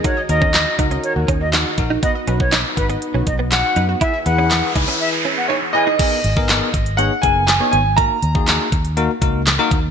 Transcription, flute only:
\new Staff \with { instrumentName = "Flute" } { \time 4/4 \key gis \minor \tempo 4 = 121 cis''8 dis''4 r8 cis''16 r8 dis''16 r4 | dis''16 r8 cis''8 r16 b'16 r8. dis''16 r16 fis''8. r16 | e''8 fis''4 r8 e''16 r8 fis''16 r8 gis''16 r16 | r1 |
r1 | }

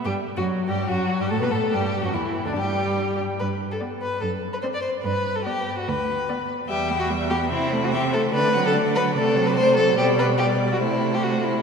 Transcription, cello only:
\new Staff \with { instrumentName = "Cello" } { \clef bass \time 4/4 \key g \major \tempo 4 = 145 g,8. fis,8. g,8 fis,8. g,16 a,16 b,16 a,8 | g,8. fis,16 e,8. d,16 g,4. r8 | g,4 r4 fis,4 r4 | g,4 r4 d,4 r4 |
\key a \dorian e,2 c2 | d2 c2 | b,2 c2 | }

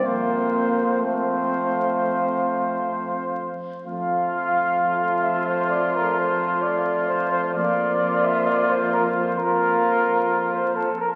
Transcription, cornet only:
\new Staff \with { instrumentName = "Cornet" } { \time 4/4 \key f \major \tempo 4 = 65 f''4 f''2~ f''8 r8 | f''4. e''16 c''16 d''16 bes'16 c''8 d''8 c''16 c''16 | d''8. e''16 d''16 c''16 bes'16 c''16 bes'4~ bes'16 c''16 a'16 bes'16 | }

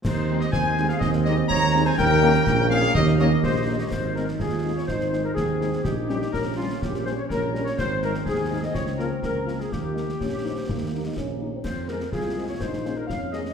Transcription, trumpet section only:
\new Staff \with { instrumentName = "Trumpet section" } { \time 2/4 \key aes \major \tempo 4 = 124 << { c''8. ees''16 aes''8. f''16 | ees''8 ees''8 bes''8. aes''16 | g''4. f''8 | ees''8 ees''4. |
r2 | r2 | r2 | r2 |
r2 | r2 | r2 | r2 |
r2 | r2 | } \\ { r2 | r2 | r2 | r8 des''16 ees''16 c''8. des''16 |
c''8 bes'8 aes'8. des''16 | c''8. bes'16 aes'4 | g'8 g'8 bes'8 f'8 | g'8 c''16 des''16 bes'8. des''16 |
c''8 bes'8 aes'8. ees''16 | des''8 bes'8 bes'8. aes'16 | g'2~ | g'4 r4 |
c''8 bes'8 aes'8. des''16 | c''8. bes'16 f''8 ees''8 | } >> }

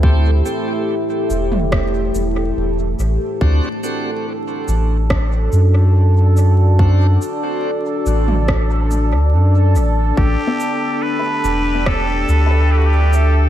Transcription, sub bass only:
\new Staff \with { instrumentName = "Sub bass" } { \clef bass \time 4/4 \key a \dorian \tempo 4 = 71 d,8 r4 e,,4 e,,8 e,,8 a,,16 r16 | d,16 r4 r16 a,,4 fis,4.~ | fis,8 r4 a,,4~ a,,16 d,16 fis,8 a,,8 | a,,16 r4 r16 e,,4 d,4. | }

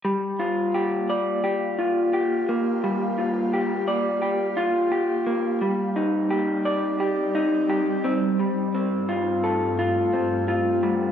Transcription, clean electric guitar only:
\new Staff \with { instrumentName = "Clean electric guitar" } { \time 4/4 \key g \minor \tempo 4 = 86 g8 f'8 g'8 d''8 g'8 f'8 g'8 bes8 | g8 f'8 g'8 d''8 g'8 f'8 g'8 bes8 | g8 ees'8 g'8 d''8 g'8 ees'8 g'8 c'8 | g8 c'8 f'8 a'8 f'8 c'8 f'8 g8 | }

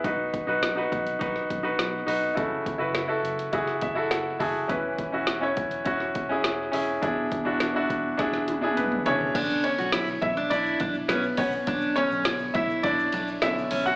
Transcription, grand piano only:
<<
  \new Staff \with { instrumentName = "Grand piano" } { \time 4/4 \key b \dorian \tempo 4 = 103 << { r1 | r2 r8 e''8 fis''8 a''8 | r1 | r2. <b b'>8 <cis' cis''>8~ |
<cis' cis''>8 <cis' cis''>4 <e' e''>8 <d' d''>4 <b b'>8 <cis' cis''>8~ | <cis' cis''>8 cis''4 <e' e''>8 <d' d''>4 <e' e''>8. <fis' fis''>16 | } \\ { <dis' fis' b'>8. <dis' fis' b'>8 <dis' fis' b'>8. <dis' fis' b'>8. <dis' fis' b'>8. <dis' fis' b'>8 | <e' fis' a'>8. <e' fis' b'>8 <e' fis' a'>8. <e' fis' gis'>8. <e' fis' a'>8. <e' fis' gis'>8 | <cis' e' b'>8. <cis' e' fis'>8 <cis' e' cis''>8. <cis' e' fis'>8. <cis' e' gis'>8. <cis' e' gis'>8 | <d' e' gis'>8. <d' e' fis'>8 <d' e' fis'>8. <d' e' gis'>8. <d' e' gis'>8. <d' e' gis'>8 |
r1 | r1 | } >> }
  \new Staff \with { instrumentName = "Grand piano" } { \clef bass \time 4/4 \key b \dorian r1 | cis4. r2 r8 | e4. r2 r8 | b,4. r2 r8 |
<d b cis'>4. r2 r8 | r8 <d b cis'>8 r2 <d b cis'>8 r8 | }
>>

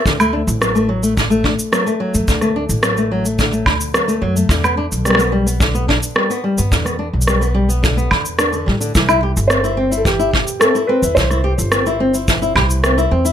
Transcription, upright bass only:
\new Staff \with { instrumentName = "Upright bass" } { \clef bass \time 4/4 \key d \mixolydian \tempo 4 = 108 d,8. a,,2 r4 fis,16 | d,8. a,,4.~ a,,16 d,4 fis,8 | e,8. b,,2 r4 g,16 | e,8. b,,4.~ b,,16 e,4 a,8 |
c,8. g,,2 r4 e,16 | c,8. g,,4.~ g,,16 c,4 e,8 | }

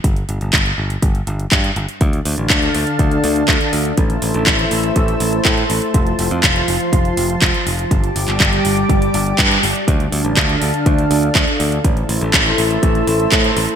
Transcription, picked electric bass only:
\new Staff \with { instrumentName = "Picked electric bass" } { \clef bass \time 4/4 \key d \minor \tempo 4 = 122 g,,16 r16 g,,16 g,,16 g,,16 r16 g,,16 r16 g,,16 r16 g,,16 r16 g,16 r16 g,,16 r16 | d,16 r16 d,16 a,,16 d,16 r16 d,16 r16 d,16 r16 d,16 r16 d,16 r16 d,16 r16 | a,,16 r16 a,,16 a,,16 a,,16 r16 a,,16 r16 a,,16 r16 a,,16 r16 a,16 r16 a,,16 r16 | f,,16 r16 f,,16 f,16 f,,16 r16 f,,16 r16 f,,16 r16 f,,16 r16 f,,16 r16 f,,16 r16 |
g,,16 r16 g,,16 g,,16 g,,16 r16 g,,16 r16 g,,16 r16 g,,16 r16 g,16 r16 g,,16 r16 | d,16 r16 d,16 a,,16 d,16 r16 d,16 r16 d,16 r16 d,16 r16 d,16 r16 d,16 r16 | a,,16 r16 a,,16 a,,16 a,,16 r16 a,,16 r16 a,,16 r16 a,,16 r16 a,16 r16 a,,16 r16 | }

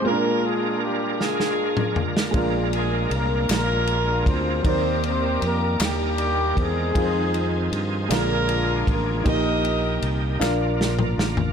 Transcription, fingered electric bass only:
\new Staff \with { instrumentName = "Fingered electric bass" } { \clef bass \time 6/8 \key bes \mixolydian \tempo 4. = 52 r2. | bes,,4 c,8 bes,,4 d,8 | ees,4 f,8 ees,4 fes,8 | f,4 g,8 bes,,4 a,,8 |
bes,,4 c,8 bes,,4 a,,8 | }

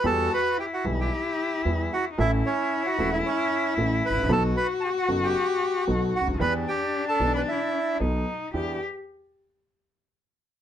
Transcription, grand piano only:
\new Staff \with { instrumentName = "Grand piano" } { \clef bass \time 4/4 \key e \dorian \tempo 4 = 113 <e, e g b g'>8 r4 <b,, b, e g b g'>8 r4 <e, e g b g'>8 r8 | <a,, a, e a cis' a'>8 r4 <e,, e, e a cis' a'>8 r4 <a,, a, e a cis' a'>8 r32 gis,,32 a,,32 ais,,32 | <b,, b, fis b dis' a'>8 r4 <fis,, fis, fis b dis' a'>8 r4 <b,, b, fis b dis' a'>8 r32 cis,32 d,32 dis,32 | <e, e b d' g'>8 r4 <b,, b, e b d' g'>8 r4 <b,, b, fis b dis' a'>8 r8 |
<e, d' e' g'>8 r2. r8 | }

